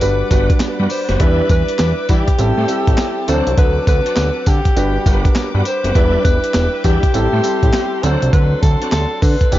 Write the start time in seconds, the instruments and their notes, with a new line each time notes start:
Already playing: alto saxophone B4, string section F#5 D6
0.01 analog synth bass G1, grand piano G3 D4 F#4 B4, string section B4 D5, closed hi-hat, tambourine
0.31 analog synth bass G1, grand piano G3 D4 F#4 B4, tonewheel organ G3 B3 F#4, kick, closed hi-hat, tambourine
0.50 kick, closed hi-hat
0.60 snare, clap, closed hi-hat, tambourine
0.79 analog synth bass G2, tonewheel organ G3 B3 F#4
0.90 alto saxophone C5, open hi-hat, tambourine
1.09 analog synth bass F#1, tonewheel organ G3 B3 F#4, snare, closed hi-hat
1.19 analog synth bass E2, grand piano G3 D4 E4 B4, tonewheel organ G3 D4 E4, alto saxophone B4, string section E5 D6, kick, closed hi-hat
1.49 analog synth bass E2, alto saxophone B4, kick, closed hi-hat, tambourine
1.68 closed hi-hat
1.79 analog synth bass E2, snare, clap, closed hi-hat, tambourine
2.09 analog synth bass E3, tonewheel organ G3 D4 E4, alto saxophone G4, kick, closed hi-hat, tambourine
2.28 kick, closed hi-hat
2.38 analog synth bass A1, grand piano G3 C4 E4 A4, string section C4 A5 E6, closed hi-hat, tambourine
2.58 analog synth bass A2, tonewheel organ A3 C4 G4
2.68 grand piano G3 C4 E4 A4, closed hi-hat, tambourine
2.87 analog synth bass A1, kick, closed hi-hat
2.97 snare, clap, closed hi-hat, tambourine
3.27 analog synth bass D2, grand piano E3 C4 D4 A4, tonewheel organ C4 D4 F#4, alto saxophone C5, string section F#5 D6, closed hi-hat, tambourine
3.34 grand piano F#3
3.47 analog synth bass C2, closed hi-hat
3.58 analog synth bass D2, alto saxophone B4, kick, closed hi-hat
3.87 analog synth bass D2, alto saxophone B4, kick, closed hi-hat, tambourine
4.06 tonewheel organ C4 D4 F#4, closed hi-hat
4.16 analog synth bass D2, snare, clap, closed hi-hat, tambourine
4.46 analog synth bass D3, alto saxophone G4, kick, closed hi-hat, tambourine
4.65 kick, closed hi-hat
4.76 analog synth bass G1, grand piano G3 D4 F#4 B4, string section G4 B4 D6, closed hi-hat, tambourine
5.05 analog synth bass G1, grand piano G3 D4 A#4 F#5, tonewheel organ G3 B3 F#4, kick, closed hi-hat, tambourine
5.13 grand piano B4
5.25 kick, closed hi-hat
5.35 snare, clap, closed hi-hat, tambourine
5.54 analog synth bass G2, tonewheel organ G3 B3 F#4
5.65 alto saxophone C5, closed hi-hat, tambourine
5.84 analog synth bass F#1, tonewheel organ G3 B3 F#4, closed hi-hat
5.95 analog synth bass E1, grand piano G3 D4 E4 B4, tonewheel organ G3 D4 E4, alto saxophone B4, string section E5 G5, kick, closed hi-hat
6.24 analog synth bass E1, alto saxophone B4, kick, closed hi-hat, tambourine
6.44 closed hi-hat
6.54 analog synth bass E1, snare, clap, closed hi-hat, tambourine
6.84 analog synth bass E2, tonewheel organ G3 D4 E4, alto saxophone G4, kick, closed hi-hat, tambourine
7.03 kick, closed hi-hat
7.14 analog synth bass A1, grand piano G3 C4 E4 A4, string section A4 C6, closed hi-hat, tambourine
7.33 analog synth bass A2, tonewheel organ A3 C4 G4
7.44 grand piano G3 C4 E4 A4, closed hi-hat, tambourine
7.63 analog synth bass A1, kick, closed hi-hat
7.73 snare, clap, closed hi-hat, tambourine
8.03 analog synth bass D2, grand piano F#3 C4 D4 A4, tonewheel organ C4 D4 F#4, alto saxophone C5, string section D5 F#5 C6, closed hi-hat, tambourine
8.22 analog synth bass C2, closed hi-hat
8.33 analog synth bass D2, alto saxophone B4, kick, closed hi-hat
8.62 analog synth bass D2, alto saxophone A4, kick, closed hi-hat, tambourine
8.81 tonewheel organ C4 D4 F#4, closed hi-hat
8.92 analog synth bass D2, alto saxophone A4, snare, clap, closed hi-hat, tambourine
9.22 analog synth bass D3, alto saxophone B4, kick, open hi-hat, tambourine
9.41 kick, closed hi-hat
9.52 analog synth bass E1, grand piano E3 B3 D4 G4, string section G4 E5 B5, closed hi-hat, tambourine